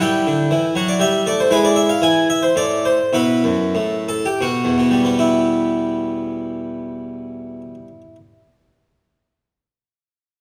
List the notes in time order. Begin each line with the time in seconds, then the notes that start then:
0.01 G3 E4 G5
0.27 D3
0.51 E3
0.75 F#3 F#5
0.88 D5
1.00 G3 E5
1.26 A3 D5
1.40 C5
1.51 G#3 E4 B4
1.65 D5
1.76 E5
1.89 F5
2.02 E3 G#5
2.30 E5
2.43 C5
2.56 A2 D5
2.85 C5
3.13 B2 E4 B4
3.44 F#2
3.75 A2
4.09 A4
4.26 G4
4.41 B2 F#4
4.65 E2
4.78 B2
4.91 G3
5.05 B3
5.19 E4